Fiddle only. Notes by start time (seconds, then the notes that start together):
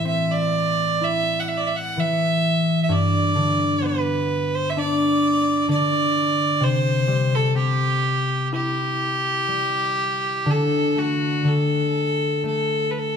0.07 E5
0.31 D5
1.04 E5
1.40 F#5
1.48 E5
1.57 D5
1.67 E5
1.76 F#5
2.00 E5
2.83 E5
2.91 D5
3.85 B4
4.55 C5
4.70 E5
4.78 D5
5.70 D5
6.64 C5
7.35 A4
7.56 G4
8.54 G4
10.50 A4
10.98 F#4
11.47 A4
12.47 A4
12.91 B4
12.98 A4